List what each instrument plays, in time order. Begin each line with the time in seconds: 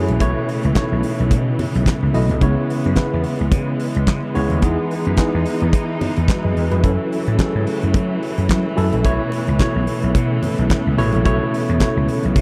Already playing: string section C#3 E3 F#3 A3, tine electric piano F#3 C#4 E4 F#4 G#4 A4
0.09 slap bass A#1, closed hi-hat, high conga
0.20 slap bass B1, tine electric piano B2 A3 E4 C#5, string section B3, kick, closed hi-hat, muted conga
0.49 open hi-hat
0.63 slap bass C#2, closed hi-hat
0.74 tine electric piano B2 A3 D#4 C#5, kick, snare, clap, closed hi-hat, high conga
0.82 tine electric piano E4
0.92 slap bass B1
1.03 open hi-hat
1.18 slap bass B1, closed hi-hat
1.31 slap bass B2, kick, closed hi-hat, muted conga
1.59 open hi-hat, low conga
1.74 slap bass B1, closed hi-hat
1.86 kick, snare, clap, closed hi-hat, high conga
2.03 slap bass C#2
2.13 slap bass B1, tine electric piano B2 A3 E4 D#5, open hi-hat
2.29 slap bass C2, closed hi-hat, high conga
2.40 slap bass C#2, tine electric piano C#3 B3 E4 C#5, string section E3 G#3, kick, closed hi-hat, muted conga
2.70 open hi-hat
2.84 slap bass F#2, closed hi-hat
2.96 tine electric piano C#3 B3 E4 B4, kick, snare, clap, closed hi-hat, high conga
3.14 slap bass E2
3.24 open hi-hat
3.39 slap bass C#2, closed hi-hat
3.52 slap bass C#3, kick, closed hi-hat, muted conga, low conga
3.80 open hi-hat
3.95 slap bass C#2, closed hi-hat
4.07 slap bass C#3, kick, snare, clap, closed hi-hat, high conga
4.34 slap bass C#2, tine electric piano C#3 B3 E4 C#5, open hi-hat
4.50 slap bass D#2, closed hi-hat, high conga
4.61 slap bass E2, tine electric piano E3 B3 D#4 G#4, string section D#4, kick, closed hi-hat, muted conga
4.91 open hi-hat
5.05 slap bass F#2, closed hi-hat
5.17 tine electric piano E3 B3 D#4 G#4, kick, snare, clap, closed hi-hat, high conga
5.34 slap bass E2
5.46 open hi-hat
5.60 slap bass E2, closed hi-hat
5.73 slap bass E3, kick, closed hi-hat, muted conga
6.01 open hi-hat, low conga
6.16 slap bass E2, closed hi-hat
6.28 tine electric piano F#4 B4, kick, snare, clap, closed hi-hat, high conga
6.44 slap bass F#2, tine electric piano G#4 D#5
6.57 slap bass E2, open hi-hat
6.71 slap bass F2, tine electric piano F#4 B4, closed hi-hat, high conga
6.82 slap bass F#2, string section C#3 F#3 A3, tine electric piano F#3 C#4 E4 A4, kick, closed hi-hat, muted conga
7.12 open hi-hat
7.27 slap bass A2, closed hi-hat
7.38 tine electric piano F#3 C#4 E4 G#4, kick, snare, clap, closed hi-hat, high conga
7.46 tine electric piano A4
7.55 slap bass G#2
7.67 open hi-hat
7.82 slap bass F#2, closed hi-hat
7.94 slap bass F#3, kick, closed hi-hat, muted conga, low conga
8.23 open hi-hat
8.38 slap bass F#2, closed hi-hat
8.49 slap bass F#3, kick, snare, clap, closed hi-hat, high conga
8.76 slap bass F#2, tine electric piano F#3 C#4 E4 A4, open hi-hat
8.92 slap bass A#1, closed hi-hat, high conga
9.04 slap bass B1, tine electric piano B2 A3 E4 C#5, string section C#3 A3 B3, kick, closed hi-hat, muted conga
9.32 open hi-hat, muted conga
9.47 slap bass C#2, closed hi-hat
9.59 tine electric piano B2 A3 E4 C#5, kick, snare, clap, closed hi-hat, high conga
9.76 slap bass B1
9.87 open hi-hat
10.02 slap bass B1, closed hi-hat
10.15 slap bass B2, kick, closed hi-hat, muted conga
10.43 open hi-hat, low conga
10.58 slap bass B1, closed hi-hat
10.70 kick, snare, clap, closed hi-hat, high conga
10.87 slap bass C#2
10.97 slap bass A1, tine electric piano B2 A3 E4 C#5, open hi-hat
11.13 slap bass A#1, closed hi-hat, high conga
11.24 slap bass B1, tine electric piano B2 A3 E4 C#5, kick, closed hi-hat, muted conga
11.54 open hi-hat
11.69 slap bass E2, closed hi-hat
11.80 tine electric piano B2 A3 E4 C#5, kick, snare, clap, closed hi-hat, high conga
11.97 slap bass C#2
12.08 open hi-hat
12.23 slap bass B1, closed hi-hat
12.36 slap bass B2, kick, closed hi-hat, muted conga, low conga